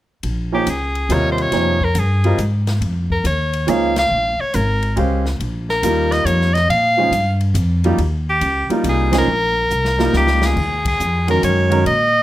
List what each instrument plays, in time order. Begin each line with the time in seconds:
0.23 upright bass A#1, ride
0.52 grand piano F3 A#3 D#4 G#4 C#5, soprano saxophone G4
0.67 upright bass C#2, soprano saxophone G#4, hi-hat pedal, ride
0.95 ride
1.09 upright bass D#2, grand piano C3 G3 F4 A#4 D#5, hi-hat pedal, ride
1.13 soprano saxophone C#5
1.32 soprano saxophone C5
1.38 soprano saxophone C#5, ride
1.51 upright bass F2, grand piano F3 A#3 D#4 G#4 C#5, snare, ride
1.81 soprano saxophone A#4, kick
1.95 upright bass G2, hi-hat pedal, ride
1.99 soprano saxophone G#4
2.24 grand piano G3 C4 F4 A#4 D#5, ride
2.37 upright bass G#2, hi-hat pedal, ride
2.67 snare, ride
2.81 upright bass F2, ride
3.10 soprano saxophone A#4, kick
3.24 upright bass D#2, soprano saxophone C#5, hi-hat pedal, ride
3.53 ride
3.67 upright bass C#2, grand piano F3 A#3 D#4 G#4 C#5, soprano saxophone F5, hi-hat pedal, ride
3.96 soprano saxophone F5, snare, ride
4.11 upright bass A#1
4.40 soprano saxophone C#5, muted upright bass stroke
4.54 upright bass G#1, soprano saxophone A#4, hi-hat pedal, ride
4.82 ride
4.96 upright bass C#2, grand piano G#3 C#4 G4 C5 F5, ride
5.26 snare
5.40 upright bass A#1, ride
5.69 soprano saxophone A#4, snare
5.83 upright bass D#2, grand piano G3 A#3 D#4 F4 A#4, hi-hat pedal, ride
6.12 soprano saxophone D#5, snare, ride
6.25 upright bass F2, soprano saxophone C#5, hi-hat pedal, ride
6.41 snare
6.54 soprano saxophone D#5, snare, ride
6.68 upright bass A#2, soprano saxophone F5, ride
6.97 grand piano F3 G#3 C#4 D#4 G#4
7.11 upright bass G2, hi-hat pedal, ride
7.41 ride
7.54 upright bass F2, hi-hat pedal, ride
7.84 grand piano G3 A#3 D#4 F4 G4, ride
7.98 upright bass D#2, ride
8.30 soprano saxophone G4
8.41 upright bass C#2, hi-hat pedal, ride
8.69 grand piano G3 A#3 D#4 F4 A#4, muted upright bass stroke, ride
8.84 upright bass C2, hi-hat pedal, ride
8.89 soprano saxophone G#4
9.11 grand piano F3 G#3 C#4 D#4 G#4, snare, ride
9.18 soprano saxophone A#4
9.27 upright bass A#1
9.70 upright bass C2, hi-hat pedal
9.85 snare
9.98 grand piano G3 A#3 D#4 F4 A#4, snare
10.13 upright bass C#2, soprano saxophone G4, snare
10.27 snare
10.42 soprano saxophone G#4, snare
10.57 upright bass D#2, kick, crash
10.85 soprano saxophone G#4, kick, ride
11.00 upright bass F2, hi-hat pedal
11.28 grand piano D#3 G#3 C#4 F#4 A#4, soprano saxophone A#4, ride
11.43 upright bass F#2, soprano saxophone C#5, hi-hat pedal, ride
11.70 grand piano D#3 G#3 C#4 F#4 A#4, ride
11.86 upright bass A#2, soprano saxophone D#5, ride